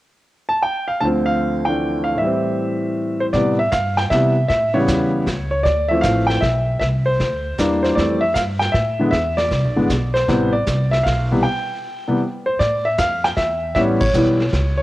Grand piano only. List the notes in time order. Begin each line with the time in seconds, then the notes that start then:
0.49 A5
0.63 G5
0.88 F5
1.01 D2 D3 F3 A5
1.05 C4
1.26 F5
1.65 E3 A3 D4 G5
2.04 F5
2.14 A2 E3 E5
2.22 G3 C4
3.20 C5
3.33 C3 E3 G3 B3 D5
3.59 E5
3.72 F5
3.97 G5
4.10 C3 E3 G3 B3 E5
4.49 E5
4.74 C#3 E3 G3 B3 C#5
5.51 C#5
5.63 D5
5.89 E3 F3 A3 C4 E5
6.01 F5
6.27 G5
6.41 E5
6.80 E5
7.06 C5
7.58 E3 G3 A#3 D4
7.83 C5
7.95 E3 G3 A3 C4 D5
8.21 E5
8.34 F5
8.59 G5
8.72 E5
8.99 D3 E3 G#3 B3
9.11 E5
9.37 D5
9.76 D3 E3 G#3 B3
10.14 C5
10.28 C3 E3 G3 B3
10.53 D5
10.91 E5
11.03 F5
11.32 C3 E3 G3 B3
11.43 G5
12.08 C3 E3 G3 B3
12.46 C5
12.59 D5
12.85 E5
12.99 F5
13.24 G5
13.37 E5
13.75 E3 G3 B3 C#4 E5
14.00 C#5
14.15 E3 G3 B3 E4
14.78 C#5